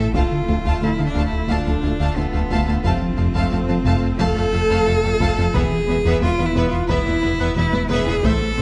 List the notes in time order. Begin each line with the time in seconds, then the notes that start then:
Already playing: A1 A3 C4 E4 A4
0.14 D1 D2 D3 A3 D4 F4 F5 A5, taiko
0.32 D3
0.48 D2 F3 A3 F5 A5
0.65 D2 D3 A3 F5 A5, taiko
0.82 D2 F3 A3 E4 F5 A5
0.98 D2 D3 A3 F5 A5
1.05 D4
1.14 D2 D3 A3 F5 A5
1.27 E4
1.33 D2
1.49 D2 D3 A3 D4 F5 A5, taiko
1.66 D2 F3 A3 F5 A5
1.83 D2 A3 D4 F5 A5
1.99 D2 D3 A3 F5 A5
2.16 D2 A3 B3 D4 F5 A5
2.33 D2 F3 A3 F5 A5
2.50 D2 D3 A3 F5 A5, taiko
2.67 D2 A3 D4 F5 A5
2.84 F1 F2 F3 A3 C4 A4 F5 A5, taiko
3.02 F3
3.17 F1 F2 A3 F5 A5
3.34 F2 F3 A3 F5 A5, taiko
3.51 F1 F2 A3 F5 A5
3.68 F2 F3 A3 C4 F5 A5
3.85 F1 F2 F3 A3 F5 A5
4.03 F2
4.19 F1 F2 F3 A3 A4 F5 A5, taiko
4.36 F2 A3 F5 A5
4.53 F1 F2 A3 F4 F5 A5
4.70 F2 F3 A3 F5 A5
4.87 F1 F2 A3 F4 F5 A5
5.04 F2 A3 F5 A5
5.20 F1 F2 F3 A3 F5 A5, taiko
5.37 F2 A3 F4 F5 A5
5.53 E1 E2 E3 B3 E4 G#4 B4 E5, taiko
5.72 E3
5.87 E1 E2 G#3 B3 B4 E5
6.05 E2 E3 B3 B4 E5, taiko
6.21 E1 E2 G#3 B3 F4 B4 E5
6.38 E2 E3 B3 B4 E5
6.44 E4
6.55 E1 E2 E3 B3 B4 E5
6.67 F4
6.73 E2
6.88 E1 E2 E3 B3 E4 B4 E5, taiko
7.05 E2 G#3 B3 B4 E5
7.21 E1 E2 B3 E4 B4 E5
7.38 E2 E3 B3 B4 E5
7.55 E1 E2 B3 E4 B4 E5, taiko high
7.71 E2 G#3 B3 B4 E5, taiko high
7.88 E1 E2 E3 B3 G#4 B4 E5, taiko high
8.06 E2 B3 E4 B4 E5, taiko low
8.23 A1 A2 A3 C4 A4 C5 E5, taiko
8.42 A3
8.56 A1 A2 A3 C4 C5